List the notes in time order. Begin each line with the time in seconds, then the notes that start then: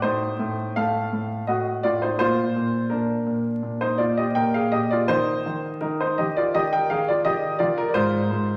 0.02 A2 D#4 C5
0.39 A2
0.76 A2 A4 F5
1.12 A2
1.47 A2 F#4 D#5
1.83 A2 F4 D5
2.02 D#4 C5
2.19 A#2 F4 C5
2.56 A#2
2.90 A#2 D4 A#4
3.26 A#2
3.63 A#2
3.81 D#4 C5
3.98 A#2 F4 D5
4.17 G4 D#5
4.35 A#2 A#4 G5
4.54 G#4 F5
4.72 A#2 G4 D#5
4.91 F4 D5
5.08 D#3 D#4 C5
5.46 D#3
5.81 D#3 D#4 A#4
6.01 D#4 C5
6.18 D#3 G4 D#5
6.37 F4 D5
6.54 D#3 G4 D#5
6.73 A#4 G5
6.90 D#3 G#4 F5
7.08 F4 D5
7.25 D#3 G4 D#5
7.59 D#3 F4 D5
7.78 A#4
7.89 D5
7.94 G#2 F4 C5
8.31 G#2